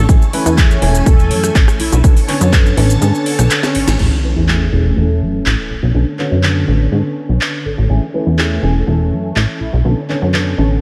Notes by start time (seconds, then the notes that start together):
0.09 A1 E3 A3 C#4 G#4 G#5, kick, closed hi-hat, shaker
0.22 shaker
0.33 E3 A3 C#4 B4, open hi-hat
0.46 E2, closed hi-hat, shaker
0.57 E3 A3 G#4, kick, clap, closed hi-hat, shaker
0.71 shaker
0.82 E1 E3 A3 C#4 G#4, open hi-hat
0.95 closed hi-hat, shaker
1.06 E1 E3 A3 C#4 A4, kick, closed hi-hat, shaker
1.19 shaker
1.31 F#2, open hi-hat
1.44 cross-stick, closed hi-hat, shaker
1.55 A1, kick, clap, closed hi-hat, shaker
1.68 cross-stick, shaker
1.79 B1 D3 E4 C#5 A5, open hi-hat
1.92 B1, closed hi-hat, shaker
2.04 B1 D3 B3 C#4 A4, kick, closed hi-hat, shaker
2.17 open hi-hat, shaker
2.28 D3 B3 C#4 C#5, clap, open hi-hat
2.41 F#2, closed hi-hat, shaker
2.52 D3 B3 C#4 A4, kick, clap, closed hi-hat, shaker
2.66 shaker
2.77 A1 D3 B3 C#4 A4, open hi-hat
2.90 closed hi-hat, shaker
3.01 G#2 D3 B3 C#4 A4, closed hi-hat, shaker
3.15 shaker
3.26 open hi-hat
3.39 B1, cross-stick, closed hi-hat, shaker
3.50 clap, closed hi-hat, shaker
3.63 C#4, snare, shaker
3.75 A1, open hi-hat
3.87 A1, snare, closed hi-hat, shaker
3.99 A1 E3 A3 C#4 G#4 G#5, crash, sub drop
4.23 E3 A3 C#4 B4
4.36 E2
4.48 E3 A3 C#4 G#4, clap
4.72 E1 E3 A3 C#4 G#4
4.96 E1 E3 A3 C#4 A4
5.21 F#2
5.46 A1, clap
5.70 B1 D3 C#5 A5
5.83 B1
5.94 B1 D3 B3 C#4 A4
6.18 D3 B3 C#4 F#4 C#5, clap
6.32 F#2
6.43 D3 B3 C#4 A4, clap
6.67 A1 D3 B3 C#4 A4
6.91 G#2 D3 B3 C#4 A4
7.29 B1
7.41 clap
7.65 A1 A4
7.78 A1 A4
7.89 A1 E3 A3 C#4 G#4 G#5
8.14 E3 A3 C#4 B4
8.27 E2
8.38 E3 A3 C#4 G#4, clap
8.62 E1 E3 A3 C#4 G#4
8.86 E1 E3 A3 C#4 A4
9.12 F#2
9.36 A1, clap
9.60 B1 D3 E4 C#5 A5
9.73 B1
9.84 B1 D3 B3 C#4 A4
10.09 D3 B3 C#4 C#5, clap
10.22 F#2
10.33 D3 B3 C#4 A4, clap
10.58 A1 D3 B3 C#4 A4